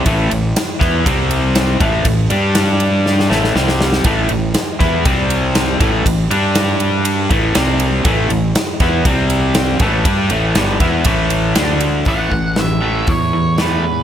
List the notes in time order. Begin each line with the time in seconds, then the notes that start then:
0.05 A1 A2 E3 A3, kick, ride
0.31 A1 A2 E3, ride
0.56 snare, ride
0.80 E2 E3 B3 E4, kick, snare, ride
1.05 C2 C3 G3 C4, kick, ride
1.31 ride
1.55 snare, ride
1.80 A1 A2 E3 A3, kick, ride
2.05 A1 A2 E3, kick, ride
2.30 G2 G3 D4 G4, ride
2.55 snare, ride
2.80 ride
3.06 snare
3.19 snare
3.30 A1 A2 E3 A3, snare
3.44 snare
3.55 C2 C3 G3 C4, snare
3.68 snare
3.81 snare
3.93 snare
4.04 A1 A2 E3 A3, kick, ride
4.29 A1 A2 E3, ride
4.54 snare, ride
4.80 E2 E3 B3 E4, kick, snare, ride
5.05 C2 C3 G3 C4, kick, ride
5.30 ride
5.55 snare, ride
5.80 A1 A2 E3 A3, kick, ride
6.06 A1 A2 E3, kick, ride
6.31 G2 G3 D4 G4, ride
6.55 snare, ride
6.80 ride
7.05 ride
7.30 A1 A2 E3 A3, kick, ride
7.55 C2 C3 G3 C4, snare, ride
7.80 ride
8.05 A1 A2 E3 A3, kick, ride
8.30 A1 A2 E3, ride
8.55 snare, ride
8.80 E2 E3 B3 E4, kick, snare, ride
9.05 C2 C3 G3 C4, kick, ride
9.30 ride
9.55 snare, ride
9.79 A1 A2 E3 A3, kick, ride
10.05 G2 G3 D4 G4, kick, ride
10.30 A1 A2 E3 A3, ride
10.55 G1 G2 D3 G3, snare, ride
10.80 E2 E3 B3 E4, kick, ride
11.05 A1 A2 E3 A3, kick, ride
11.30 ride
11.55 D2 D3 A3 D4, snare, ride
11.80 ride
12.05 A1 A2 E3 A3 F#5, kick, open hi-hat
12.32 A1 A2 E3, kick
12.56 A2 E3 E5, snare, open hi-hat
12.81 A2 E3 A3
13.07 E2 A2 E3 C#5, kick, open hi-hat
13.33 A2 E3
13.58 A2 E3 A3 B4, snare, open hi-hat
13.85 A2 E3